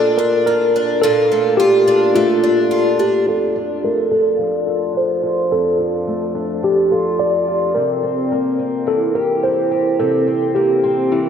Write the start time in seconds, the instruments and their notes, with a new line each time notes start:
Already playing: twelve-string acoustic guitar A#2 A3 D4 F4, tine electric piano A4
0.18 twelve-string acoustic guitar D4, tine electric piano A#4
0.46 twelve-string acoustic guitar F4, tine electric piano A#4
0.76 twelve-string acoustic guitar D4
1.02 twelve-string acoustic guitar A#2 F4, tine electric piano A4
1.32 twelve-string acoustic guitar A3
1.57 twelve-string acoustic guitar F4, tine electric piano G4
1.88 twelve-string acoustic guitar D4
2.15 twelve-string acoustic guitar A3, tine electric piano F4
2.44 twelve-string acoustic guitar D4
2.71 twelve-string acoustic guitar F4
2.99 twelve-string acoustic guitar D4, tine electric piano G4
3.27 twelve-string acoustic guitar F2, tine electric piano A4
3.56 twelve-string acoustic guitar D4
3.84 twelve-string acoustic guitar A3, tine electric piano A#4
4.11 twelve-string acoustic guitar D4, tine electric piano A4
4.39 twelve-string acoustic guitar F3
4.67 twelve-string acoustic guitar F4
4.95 twelve-string acoustic guitar D4, tine electric piano C5
5.23 twelve-string acoustic guitar F4
5.51 twelve-string acoustic guitar F2, tine electric piano A4
5.79 twelve-string acoustic guitar D4
6.07 twelve-string acoustic guitar A3
6.35 twelve-string acoustic guitar D4
6.63 twelve-string acoustic guitar F3, tine electric piano G4
6.91 twelve-string acoustic guitar F4, tine electric piano A4
7.19 twelve-string acoustic guitar D4, tine electric piano D5
7.47 twelve-string acoustic guitar F4
7.75 twelve-string acoustic guitar C3, tine electric piano A#4
8.03 twelve-string acoustic guitar C4
8.32 twelve-string acoustic guitar A#3
8.59 twelve-string acoustic guitar C4
8.87 twelve-string acoustic guitar E3, tine electric piano A4
9.15 twelve-string acoustic guitar G4, tine electric piano A#4
9.43 twelve-string acoustic guitar C4, tine electric piano C5
9.71 twelve-string acoustic guitar G4
9.99 twelve-string acoustic guitar C3, tine electric piano A4
10.27 twelve-string acoustic guitar C4
10.55 twelve-string acoustic guitar A#3, tine electric piano G4
10.84 twelve-string acoustic guitar C4
11.12 twelve-string acoustic guitar E3, tine electric piano E4